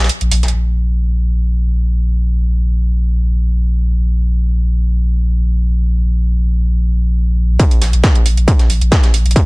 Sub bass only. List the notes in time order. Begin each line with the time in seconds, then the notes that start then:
0.21 A#1
0.31 A#1
0.43 A#1
0.54 A#1
7.82 A#1
7.93 A#1
8.15 A#1
8.26 A#1
8.38 A#1
8.70 A#1
8.81 A#1
9.04 A#1
9.14 A#1
9.26 A#1